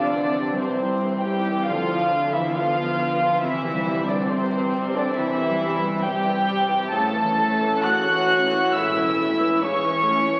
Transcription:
Already playing: double bass section C2, viola section C3 C4, harp C3 C5, french horn section D3, cello section D3, violin section D4 D5
0.13 viola section E3
0.22 harp C4
0.36 viola section C3
0.51 harp G3
0.57 cello section C3, french horn section C3, viola section E3, violin section C4 C5
0.80 viola section C3, harp E4
1.03 viola section E3
1.11 harp C5
1.22 viola section C3, cello section G3, french horn section G3, violin section G4 G5
1.40 harp E4
1.47 viola section E3
1.66 double bass section D2, viola section D3, harp D3, cello section F3, french horn section F3, violin section F4 F5
1.91 viola section F3
1.99 harp D4
2.13 viola section D3
2.27 harp F3
2.33 cello section E3, french horn section E3, viola section F3, violin section E4 E5
2.54 viola section D3 B3, french horn section F3, cello section F3, violin section F4 F5, harp F4
2.78 viola section F3
2.85 harp B4
3.00 viola section D3
3.14 harp F4
3.21 viola section F3
3.41 double bass section C2, viola section C3 C4, harp C3, french horn section E3, cello section E3, violin section E4 E5
3.65 viola section E3
3.73 harp G3
3.87 viola section G3
4.02 harp C4
4.07 french horn section D3, cello section D3, viola section E3, violin section D4 D5
4.29 french horn section C3, viola section C3, cello section C3, violin section C4 C5, harp C5
4.53 viola section E3
4.60 harp G4
4.75 viola section G3
4.89 harp C5
4.94 french horn section D3, cello section D3, viola section E3, violin section D4 D5
5.16 double bass section G1, viola section C3, harp C3, french horn section E3, cello section E3, violin section E4 E5
5.41 viola section E3
5.49 harp G3
5.63 viola section G3
5.78 harp C4
5.84 viola section E3
6.04 viola section C3, french horn section G3, cello section G3, violin section G4 G5, harp C5
6.26 viola section E3
6.34 harp G4
6.48 viola section G3
6.62 harp C5
6.69 viola section E3
6.90 double bass section A1, harp A2, viola section C#3 C#4, cello section A3, french horn section A3, violin section A4 A5
7.13 viola section E3
7.22 harp E3
7.37 viola section A3
7.56 harp A3
7.62 viola section E3
7.85 viola section C#3, harp E4, french horn section F#4, cello section F#4, violin section F#5 F#6
8.08 viola section E3
8.17 harp C#5
8.32 viola section A3
8.46 harp E4
8.53 viola section E3
8.74 double bass section E1, harp A2, viola section C#3, cello section E4, french horn section E4, violin section E5 E6
8.96 viola section E3
9.05 harp E3
9.18 viola section A3
9.34 harp A3
9.40 viola section E3
9.62 viola section C#3, french horn section C#4, cello section C#4, harp E4, violin section C#5 C#6
9.84 viola section E3
9.92 harp C#5
10.05 viola section A3
10.21 harp E4
10.27 viola section E3

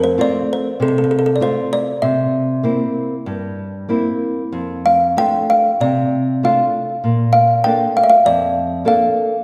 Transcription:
Already playing: nylon-string guitar F2
0.04 kalimba C5
0.18 nylon-string guitar A3 C4 F4, kalimba D5
0.53 kalimba C5
0.80 nylon-string guitar C3, kalimba A4
0.88 kalimba A4
0.98 kalimba A4
1.04 kalimba A4
1.11 kalimba A4
1.19 kalimba A4
1.26 kalimba A4
1.36 kalimba D5
1.40 nylon-string guitar A3 C4 F4, kalimba C5
1.73 kalimba D5
2.02 nylon-string guitar C3, kalimba E5
2.63 nylon-string guitar A#3 C4 E4
3.26 nylon-string guitar G2
3.89 nylon-string guitar A#3 C4 E4
4.52 nylon-string guitar F2
4.86 kalimba F5
5.17 nylon-string guitar A3 D4 F4, kalimba G5
5.50 kalimba F5
5.80 nylon-string guitar C3, kalimba D5
6.43 nylon-string guitar A3 D4 F4, kalimba F5
7.04 nylon-string guitar A#2
7.33 kalimba F5
7.64 nylon-string guitar A#3 D4 A4, kalimba G5
7.97 kalimba F5
8.04 kalimba E5
8.10 kalimba F5
8.25 nylon-string guitar F2, kalimba D5
8.85 nylon-string guitar A#3 D4 A4, kalimba F5

